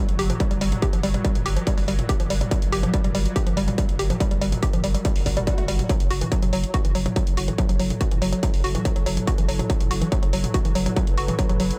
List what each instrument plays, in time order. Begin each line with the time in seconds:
Already playing: synth drone F#3, ambient pad F4 A#4
0.09 sub bass G1, closed hi-hat
0.17 sub bass G1, synth arpeggio sound G4, ambient pad D5, open hi-hat
0.30 synth arpeggio sound F3, closed hi-hat, mid tom
0.40 synth arpeggio sound G3, kick, closed hi-hat
0.51 sub bass G1, synth arpeggio sound G3, closed hi-hat
0.61 sub bass G1, synth arpeggio sound G3, open hi-hat
0.72 closed hi-hat, mid tom
0.82 synth arpeggio sound G4, kick, closed hi-hat
0.93 sub bass G1, synth arpeggio sound F3, closed hi-hat
1.03 sub bass G1, synth arpeggio sound G3, open hi-hat
1.14 synth arpeggio sound G3, closed hi-hat, mid tom
1.25 synth arpeggio sound G3, kick, closed hi-hat
1.35 sub bass G1, closed hi-hat, mid tom
1.46 sub bass G1, synth arpeggio sound G4, open hi-hat
1.56 synth arpeggio sound F3, closed hi-hat
1.67 synth arpeggio sound G3, kick, closed hi-hat
1.78 sub bass G1, synth arpeggio sound G3, open hi-hat
1.88 sub bass G1, synth arpeggio sound G3, open hi-hat
1.99 closed hi-hat, mid tom
2.09 synth arpeggio sound G4, kick, closed hi-hat
2.20 sub bass G1, synth arpeggio sound F3, closed hi-hat
2.30 sub bass G1, synth arpeggio sound G3, open hi-hat
2.41 synth arpeggio sound G3, closed hi-hat, mid tom
2.51 synth arpeggio sound G3, kick, closed hi-hat
2.62 sub bass G1, closed hi-hat
2.72 sub bass G1, synth arpeggio sound G4, open hi-hat
2.83 synth arpeggio sound F3, closed hi-hat, mid tom
2.94 synth arpeggio sound G3, kick, closed hi-hat
3.04 sub bass G1, synth arpeggio sound G3, closed hi-hat, mid tom
3.15 sub bass G1, synth arpeggio sound G3, open hi-hat
3.25 closed hi-hat
3.36 synth arpeggio sound G4, kick, closed hi-hat
3.47 sub bass G1, synth arpeggio sound F3, closed hi-hat
3.57 sub bass G1, synth arpeggio sound G3, open hi-hat
3.68 synth arpeggio sound G3, closed hi-hat, mid tom
3.78 synth arpeggio sound G3, kick, closed hi-hat
3.89 sub bass G1, closed hi-hat
3.99 sub bass G1, synth arpeggio sound G4, open hi-hat
4.10 synth arpeggio sound F3, closed hi-hat, mid tom
4.20 synth arpeggio sound G3, kick, closed hi-hat
4.31 sub bass G1, synth arpeggio sound G3, closed hi-hat
4.41 sub bass G1, synth arpeggio sound G3, open hi-hat
4.52 closed hi-hat, mid tom
4.63 synth arpeggio sound G4, kick, closed hi-hat
4.73 sub bass G1, synth arpeggio sound F3, closed hi-hat, mid tom
4.84 sub bass G1, synth arpeggio sound G3, open hi-hat
4.94 synth arpeggio sound G3, closed hi-hat
5.05 synth arpeggio sound G3, kick, closed hi-hat, swell
5.16 sub bass G1, open hi-hat
5.26 sub bass G1, synth arpeggio sound G3, kick, open hi-hat
5.37 synth arpeggio sound G3, closed hi-hat, mid tom
5.47 synth arpeggio sound G3, kick, closed hi-hat
5.58 sub bass G1, synth arpeggio sound A3, closed hi-hat
5.68 sub bass G1, synth arpeggio sound G3, open hi-hat
5.79 closed hi-hat, mid tom
5.89 synth arpeggio sound F#3, synth drone F#3, ambient pad E4, kick, closed hi-hat
6.00 sub bass F#1, closed hi-hat
6.11 sub bass F#1, synth arpeggio sound F#4, open hi-hat
6.21 synth arpeggio sound E3, closed hi-hat, mid tom
6.31 synth arpeggio sound F#3, ambient pad C#5, kick, closed hi-hat
6.42 sub bass F#1, synth arpeggio sound F#3, closed hi-hat, mid tom
6.53 sub bass F#1, synth arpeggio sound F#3, ambient pad A4, open hi-hat
6.64 closed hi-hat
6.74 synth arpeggio sound F#4, kick, closed hi-hat
6.85 sub bass F#1, synth arpeggio sound E3, closed hi-hat
6.95 sub bass F#1, synth arpeggio sound F#3, open hi-hat
7.06 synth arpeggio sound F#3, closed hi-hat, mid tom
7.16 synth arpeggio sound F#3, kick, closed hi-hat
7.27 sub bass F#1, closed hi-hat
7.37 sub bass F#1, synth arpeggio sound F#4, open hi-hat
7.48 synth arpeggio sound E3, closed hi-hat, mid tom
7.58 synth arpeggio sound F#3, kick, closed hi-hat
7.69 sub bass F#1, synth arpeggio sound F#3, closed hi-hat
7.79 sub bass F#1, synth arpeggio sound F#3, open hi-hat
7.90 closed hi-hat, mid tom
8.01 synth arpeggio sound F#4, kick, closed hi-hat
8.11 sub bass F#1, synth arpeggio sound E3, closed hi-hat, mid tom
8.22 sub bass F#1, synth arpeggio sound F#3, open hi-hat
8.33 synth arpeggio sound F#3, closed hi-hat
8.43 synth arpeggio sound F#3, kick, closed hi-hat
8.54 sub bass F#1, open hi-hat
8.64 sub bass F#1, synth arpeggio sound F#4, open hi-hat
8.75 synth arpeggio sound E3, closed hi-hat, mid tom
8.85 synth arpeggio sound F#3, kick, closed hi-hat
8.96 sub bass F#1, synth arpeggio sound F#3, closed hi-hat
9.06 sub bass F#1, synth arpeggio sound F#3, open hi-hat
9.17 closed hi-hat, mid tom
9.27 synth arpeggio sound F#4, kick, closed hi-hat
9.38 sub bass F#1, synth arpeggio sound E3, closed hi-hat
9.49 sub bass F#1, synth arpeggio sound F#3, open hi-hat
9.59 synth arpeggio sound F#3, closed hi-hat, mid tom
9.70 synth arpeggio sound F#3, kick, closed hi-hat
9.80 sub bass F#1, closed hi-hat, mid tom
9.91 sub bass F#1, synth arpeggio sound F#4, open hi-hat
10.02 synth arpeggio sound E3, closed hi-hat
10.12 synth arpeggio sound F#3, kick, closed hi-hat
10.23 sub bass F#1, synth arpeggio sound F#3, ambient pad B4, closed hi-hat
10.33 sub bass F#1, synth arpeggio sound F#3, open hi-hat
10.44 closed hi-hat, mid tom
10.54 synth arpeggio sound F#4, kick, closed hi-hat
10.65 sub bass F#1, synth arpeggio sound E3, closed hi-hat
10.75 sub bass F#1, synth arpeggio sound F#3, open hi-hat
10.86 synth arpeggio sound F#3, closed hi-hat, mid tom
10.96 synth arpeggio sound F#3, kick, closed hi-hat
11.07 sub bass F#1, closed hi-hat
11.18 sub bass F#1, synth arpeggio sound F#4, open hi-hat
11.28 synth arpeggio sound E3, closed hi-hat, mid tom
11.39 synth arpeggio sound F#3, kick, closed hi-hat
11.49 sub bass F#1, synth arpeggio sound F#3, closed hi-hat, mid tom
11.60 sub bass F#1, synth arpeggio sound F#3, open hi-hat
11.71 closed hi-hat